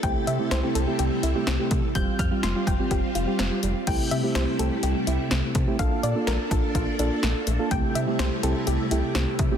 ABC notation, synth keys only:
X:1
M:4/4
L:1/16
Q:1/4=125
K:Cmix
V:1 name="Synth keys"
[A,CEG]2 z [A,CEG] z [A,CEG] z [A,CEG]3 z [A,CEG] z [A,CEG]2 z | [G,CFG]2 z [G,CFG] z [G,CFG] z [G,CFG]3 z [G,CFG] z [G,CFG]2 z | [A,CEG]2 z [A,CEG]2 z [A,CEG]3 z [A,CEG]4 z [A,CEG] | [B,DFA]2 z [B,DFA]2 z [B,DFA]3 z [B,DFA]4 z [B,DFA] |
[A,C]2 z [A,CEG]2 z [A,CEG]3 z [A,CEG]4 z [A,CEG] |]